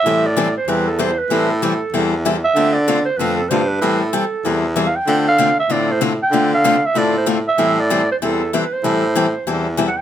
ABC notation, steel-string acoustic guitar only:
X:1
M:4/4
L:1/8
Q:"Swing" 1/4=191
K:Am
V:1 name="Steel-string acoustic guitar"
[E,G,CEA] z [E,G,CEA] z [E,G,CEA] z [E,G,CEA] z | [E,G,CEA] z [E,G,CEA] z [E,G,CEA] z [E,G,CEA] z | [D,A,CFA] z [D,A,CFA] z [D,A,CFA] z [D,A,CFA] z | [E,G,CEA] z [E,G,CEA] z [E,G,CEA] z [E,G,CEA] z |
[D,A,CFA] z [D,A,CFA] z [D,A,CFA] z [D,A,CFA] z | [D,A,CFA] z [D,A,CFA] z [D,A,CFA] z [D,A,CFA] z | [E,G,CEA] z [E,G,CEA] z [E,G,CEA] z [E,G,CEA] z | [E,G,CEA] z [E,G,CEA] z [E,G,CEA] z [E,G,CEA] z |]